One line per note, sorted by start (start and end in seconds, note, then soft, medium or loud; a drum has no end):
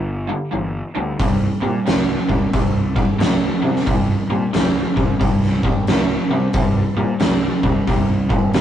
0.00 0.29 G1 medium
0.00 0.24 G2 medium
0.00 0.25 D3 medium
0.29 0.50 G2 medium
0.29 0.51 D3 medium
0.52 0.80 G1 medium
0.52 0.91 G2 medium
0.52 0.91 E3 medium
0.96 1.11 D2 medium
0.96 1.17 G2 medium
0.96 1.17 D3 medium
1.19 1.47 C2 medium
1.19 1.58 C3 medium
1.19 1.59 G3 medium
1.19 kick loud
1.19 open hi-hat soft
1.62 1.78 A#2 medium
1.62 1.84 C3 medium
1.62 1.84 G3 medium
1.86 2.14 C2 medium
1.86 2.25 C3 medium
1.86 2.25 A3 medium
1.86 snare loud
1.86 open hi-hat soft
2.29 2.45 C2 medium
2.29 2.51 C3 medium
2.29 2.51 G3 medium
2.29 kick medium
2.53 2.96 C2 medium
2.53 2.92 C3 medium
2.53 2.92 G3 medium
2.53 kick medium
2.53 open hi-hat soft
2.96 3.18 C3 medium
2.96 3.18 G3 medium
2.96 kick medium
3.19 3.48 C2 medium
3.19 3.58 C3 medium
3.19 3.58 A3 medium
3.19 snare loud
3.19 open hi-hat soft
3.62 3.84 C3 medium
3.62 3.78 C3 medium
3.62 3.84 G3 medium
3.76 snare soft
3.86 4.14 C2 medium
3.86 4.25 C3 medium
3.86 4.26 G3 medium
3.86 kick loud
3.86 open hi-hat soft
4.30 4.45 A#2 medium
4.30 4.52 C3 medium
4.30 4.52 G3 medium
4.53 4.81 C2 medium
4.53 4.92 C3 medium
4.53 4.92 A3 medium
4.53 snare loud
4.53 open hi-hat soft
4.96 5.12 C2 medium
4.96 5.18 C3 medium
4.96 5.18 G3 medium
4.96 kick medium
5.20 5.64 C2 medium
5.20 5.59 C3 medium
5.20 5.59 G3 medium
5.20 kick medium
5.20 open hi-hat soft
5.43 snare soft
5.63 5.86 C3 medium
5.63 5.86 G3 medium
5.63 kick medium
5.87 6.15 C2 medium
5.87 6.27 C3 medium
5.87 6.27 A3 medium
5.87 snare loud
5.87 open hi-hat soft
6.30 6.46 C3 medium
6.30 6.52 C3 medium
6.30 6.53 G3 medium
6.53 6.82 C2 medium
6.53 6.93 C3 medium
6.53 6.94 G3 medium
6.53 kick loud
6.53 open hi-hat soft
6.97 7.12 A#2 medium
6.97 7.19 C3 medium
6.97 7.19 G3 medium
7.20 7.48 C2 medium
7.20 7.59 C3 medium
7.20 7.60 A3 medium
7.20 snare loud
7.20 open hi-hat soft
7.63 7.79 C2 medium
7.63 7.86 C3 medium
7.63 7.86 G3 medium
7.63 kick medium
7.87 8.30 C2 medium
7.87 8.27 C3 medium
7.87 8.27 G3 medium
7.87 kick medium
7.87 open hi-hat soft
8.29 8.52 C3 medium
8.29 8.53 G3 medium
8.29 kick medium
8.54 8.61 C2 medium
8.54 8.61 C3 medium
8.54 8.61 A3 medium
8.54 snare loud
8.54 open hi-hat soft